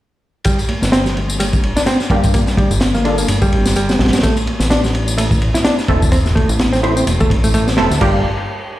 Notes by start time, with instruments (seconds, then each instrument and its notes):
0.45 picked electric bass G3, kick, ride, tambourine
0.58 ride, tambourine
0.69 ride, high conga
0.82 analog synth bass G1, snare, tambourine
0.92 picked electric bass C4, snare, ride, tambourine
1.06 snare, tambourine, high conga, low conga
1.17 ride
1.30 tambourine
1.40 picked electric bass G3, ride, tambourine, high conga
1.53 kick, tambourine
1.63 ride
1.76 picked electric bass D4, snare, tambourine, high conga
1.86 picked electric bass C4, snare, ride, tambourine
2.00 snare, tambourine
2.10 analog synth bass G2, synth stab A#3 D4 F4 G4, kick, ride, high conga
2.24 kick, tambourine
2.34 picked electric bass A#3, kick, ride, tambourine
2.47 snare, tambourine
2.57 picked electric bass G3, kick, ride, high conga
2.71 analog synth bass G1, tambourine
2.81 snare, ride, tambourine
2.94 picked electric bass A#3, snare, tambourine, high conga, low conga
3.05 synth stab A#3 D4 F4 A4, picked electric bass D4, ride
3.18 picked electric bass A#3, tambourine
3.28 analog synth bass G2, ride, tambourine, high conga
3.42 picked electric bass G3, kick, tambourine
3.52 analog synth bass G1, ride
3.65 snare, tambourine, high conga
3.76 picked electric bass G3, ride, tambourine
3.89 snare, tambourine, low conga
3.99 analog synth bass A#1, snare, ride, high conga
4.06 snare, ride
4.13 snare, ride, tambourine
4.18 snare, ride
4.23 picked electric bass A3, kick, ride, tambourine
4.37 ride, tambourine
4.47 ride, high conga
4.60 analog synth bass A1, snare, tambourine
4.70 picked electric bass D4, snare, ride, tambourine
4.83 snare, tambourine, high conga, low conga
4.95 ride
5.08 tambourine
5.17 picked electric bass A3, ride, tambourine, high conga
5.31 kick, tambourine
5.42 ride
5.54 picked electric bass E4, snare, tambourine, high conga
5.64 picked electric bass D4, snare, ride, tambourine
5.79 snare, tambourine
5.88 analog synth bass E1, synth stab A3 C4 E4 A4, kick, ride, high conga
6.02 kick, tambourine
6.12 picked electric bass C4, kick, ride, tambourine
6.26 snare, tambourine
6.35 picked electric bass A3, kick, ride, high conga
6.49 analog synth bass A1, tambourine
6.59 snare, ride, tambourine
6.73 picked electric bass C4, snare, tambourine, high conga, low conga
6.83 synth stab A3 C4 E4 C5, picked electric bass E4, ride
6.97 picked electric bass C4, tambourine
7.07 analog synth bass E1, ride, tambourine, high conga
7.20 picked electric bass A3, kick, tambourine
7.30 analog synth bass A1, kick, ride
7.44 picked electric bass A3, ride, tambourine, high conga
7.54 picked electric bass A3, ride, tambourine
7.67 snare, tambourine, low conga
7.77 analog synth bass E1, synth stab A3 C4 E4 A4, snare, ride, high conga
7.91 analog synth bass D2, snare, tambourine
8.01 analog synth bass G1, picked electric bass G3, synth stab A#3 D4 F4 G4, kick, crash